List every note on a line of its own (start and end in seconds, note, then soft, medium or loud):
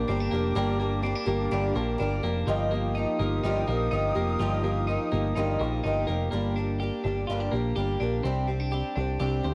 0.00 0.31 A#3 medium
0.00 1.42 G4 medium
0.00 2.32 A#4 medium
0.00 0.55 G5 medium
0.00 2.32 D6 medium
0.08 0.28 G1 loud
0.08 0.32 G3 medium
0.08 0.33 A#3 medium
0.08 0.20 C4 medium
0.08 0.32 D4 medium
0.08 0.31 G4 medium
0.20 1.03 D4 soft
0.32 0.52 F1 medium
0.32 0.55 G3 medium
0.32 0.56 A#3 medium
0.32 0.56 D4 medium
0.32 0.56 G4 medium
0.55 1.13 G1 loud
0.55 0.80 G2 medium
0.55 0.80 D3 medium
0.55 0.80 G3 medium
0.55 0.80 A#3 loud
0.55 0.79 D4 medium
0.55 0.78 G4 loud
0.55 2.32 A5 medium
0.80 1.01 G3 soft
0.80 1.03 A#3 medium
0.80 1.04 D4 medium
0.80 1.04 G4 medium
1.03 1.27 G3 medium
1.03 1.27 A#3 medium
1.03 1.15 C4 medium
1.03 1.26 D4 medium
1.03 1.25 G4 medium
1.15 1.51 D4 medium
1.26 1.47 G1 medium
1.26 1.50 G3 medium
1.26 1.51 A#3 medium
1.26 1.52 D4 medium
1.26 1.51 G4 medium
1.51 1.72 G1 loud
1.51 1.76 G2 loud
1.51 1.76 D3 medium
1.51 1.76 G3 medium
1.51 1.76 A#3 medium
1.51 1.75 D4 medium
1.51 1.74 G4 medium
1.75 1.95 A#1 loud
1.75 1.97 G3 soft
1.75 1.99 A#3 medium
1.75 1.99 D4 medium
1.75 2.00 G4 medium
1.98 2.20 G1 loud
1.98 2.23 G3 medium
1.98 2.24 A#3 medium
1.98 2.23 D4 medium
2.02 2.22 G4 medium
2.23 2.43 F1 loud
2.23 2.48 G3 medium
2.23 2.47 A#3 medium
2.23 2.48 D4 medium
2.23 2.48 G4 medium
2.47 3.05 G1 loud
2.47 2.72 G2 medium
2.47 2.72 D#3 medium
2.47 2.72 F3 loud
2.47 2.72 A#3 medium
2.47 2.72 D#4 loud
2.47 6.29 G4 medium
2.47 2.70 G4 loud
2.47 6.29 F5 medium
2.47 6.29 D#6 loud
2.71 2.93 F3 medium
2.71 2.95 A#3 medium
2.71 2.97 D#4 medium
2.71 2.96 G4 medium
2.95 3.19 F3 medium
2.95 3.20 A#3 medium
2.95 3.20 D#4 medium
2.99 3.18 G4 medium
3.19 3.39 G1 medium
3.19 3.44 F3 medium
3.19 3.44 A#3 medium
3.19 3.45 D#4 medium
3.19 3.44 G4 medium
3.44 3.64 G1 loud
3.44 3.68 G2 medium
3.44 3.68 D#3 medium
3.44 3.69 F3 medium
3.44 3.69 A#3 medium
3.44 3.67 D#4 medium
3.44 3.66 G4 loud
3.68 3.88 A#1 loud
3.68 3.90 F3 medium
3.68 3.91 A#3 medium
3.68 3.92 D#4 medium
3.68 3.92 G4 medium
3.91 4.12 G1 loud
3.91 4.16 F3 medium
3.91 4.15 A#3 medium
3.91 4.15 D#4 medium
3.91 4.14 G4 medium
4.15 4.36 F1 medium
4.15 4.39 F3 soft
4.15 4.40 A#3 medium
4.15 4.40 D#4 medium
4.15 4.40 G4 medium
4.39 4.97 G1 medium
4.39 4.64 G2 medium
4.39 4.64 D#3 medium
4.39 4.64 F3 loud
4.39 4.65 A#3 loud
4.39 4.64 D#4 medium
4.39 4.62 G4 loud
4.64 4.86 F3 soft
4.64 4.88 A#3 medium
4.64 4.89 D#4 medium
4.64 4.88 G4 medium
4.88 5.12 F3 medium
4.88 5.12 A#3 medium
4.88 5.12 D#4 medium
4.88 5.10 G4 medium
5.12 5.32 G1 loud
5.12 5.36 F3 medium
5.12 5.37 A#3 medium
5.12 5.37 D#4 medium
5.12 5.36 G4 medium
5.36 5.56 G1 loud
5.36 5.60 G2 medium
5.36 5.61 D#3 medium
5.36 5.61 F3 loud
5.36 5.61 A#3 medium
5.36 5.61 D#4 medium
5.36 5.59 G4 medium
5.61 5.80 A#1 loud
5.61 5.84 A#3 medium
5.61 5.85 D#4 medium
5.61 5.84 G4 medium
5.65 5.83 F3 medium
5.84 6.04 G1 medium
5.84 6.08 F3 medium
5.84 6.09 A#3 medium
5.84 6.08 D#4 medium
5.84 6.07 G4 medium
6.08 6.28 F1 medium
6.08 6.33 F3 medium
6.08 6.32 A#3 medium
6.08 6.33 D#4 medium
6.08 6.32 G4 medium
6.32 6.90 G1 medium
6.32 6.56 G2 medium
6.32 6.57 D3 medium
6.32 6.57 G3 medium
6.32 6.57 A#3 medium
6.32 6.56 D4 medium
6.32 6.55 G4 medium
6.56 6.78 G3 soft
6.56 6.80 A#3 soft
6.56 6.81 D4 medium
6.56 6.80 G4 soft
6.80 7.04 G3 medium
6.80 7.05 A#3 medium
6.80 7.05 D4 medium
6.80 7.03 G4 medium
7.04 7.24 G1 medium
7.04 7.29 G3 medium
7.04 7.30 A#3 soft
7.04 7.29 D4 medium
7.04 7.28 G4 medium
7.27 7.48 G1 medium
7.27 7.53 G2 medium
7.27 7.53 D3 loud
7.27 7.54 G3 medium
7.27 7.54 A#3 medium
7.27 7.40 F4 medium
7.32 7.53 D4 medium
7.32 7.52 G4 medium
7.40 7.75 G4 medium
7.51 7.72 A#1 medium
7.51 8.23 A#3 medium
7.51 7.77 D4 medium
7.51 7.77 G4 medium
7.56 7.75 G3 soft
7.56 7.76 A#3 soft
7.76 7.96 G1 medium
7.76 8.00 G3 medium
7.76 8.01 A#3 medium
7.76 8.00 D4 medium
7.76 7.99 G4 medium
8.00 8.20 A#1 medium
8.00 8.24 G3 soft
8.00 8.25 A#3 medium
8.00 8.25 D4 medium
8.00 8.25 G4 medium
8.24 8.82 C2 medium
8.24 8.49 C3 medium
8.24 8.49 G3 medium
8.24 8.49 C4 medium
8.24 8.48 D4 medium
8.24 8.47 G4 loud
8.47 8.60 C4 medium
8.47 8.72 D4 medium
8.47 8.72 G4 medium
8.51 8.71 C4 soft
8.60 8.94 D4 medium
8.71 8.96 G3 medium
8.71 8.97 C4 medium
8.71 8.97 D4 medium
8.71 8.95 G4 medium
8.97 9.16 C2 medium
8.97 9.20 C4 medium
8.97 9.20 D4 medium
8.97 9.21 G4 medium
9.19 9.40 C2 loud
9.19 9.44 C3 medium
9.19 9.44 G3 medium
9.19 9.45 C4 medium
9.19 9.44 D4 medium
9.19 9.42 G4 medium
9.43 9.54 D2 loud
9.43 9.54 C4 soft
9.43 9.54 D4 soft
9.43 9.54 G4 medium